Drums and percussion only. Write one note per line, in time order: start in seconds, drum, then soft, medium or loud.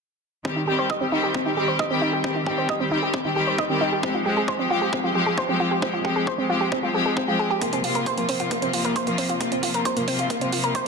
0.45 kick loud
0.90 kick loud
1.34 kick loud
1.79 kick loud
2.24 kick loud
2.46 kick medium
2.69 kick loud
3.14 kick loud
3.58 kick loud
4.03 kick loud
4.48 kick loud
4.93 kick loud
5.38 kick loud
5.82 kick loud
6.05 kick medium
6.27 kick loud
6.72 kick loud
7.17 kick loud
7.61 kick loud
7.61 closed hi-hat medium
7.73 closed hi-hat soft
7.84 open hi-hat loud
7.95 closed hi-hat soft
8.06 kick loud
8.06 closed hi-hat medium
8.18 closed hi-hat soft
8.29 open hi-hat medium
8.40 closed hi-hat soft
8.51 kick loud
8.51 closed hi-hat medium
8.62 closed hi-hat soft
8.73 open hi-hat medium
8.85 closed hi-hat soft
8.96 kick loud
8.96 closed hi-hat medium
9.07 closed hi-hat soft
9.18 open hi-hat loud
9.29 closed hi-hat soft
9.41 kick loud
9.41 closed hi-hat medium
9.52 closed hi-hat soft
9.63 kick medium
9.63 open hi-hat medium
9.74 closed hi-hat soft
9.85 kick loud
9.85 closed hi-hat medium
9.97 closed hi-hat soft
10.08 open hi-hat loud
10.19 closed hi-hat soft
10.30 kick loud
10.30 closed hi-hat medium
10.41 closed hi-hat soft
10.53 open hi-hat medium
10.64 closed hi-hat soft
10.75 kick loud
10.75 closed hi-hat medium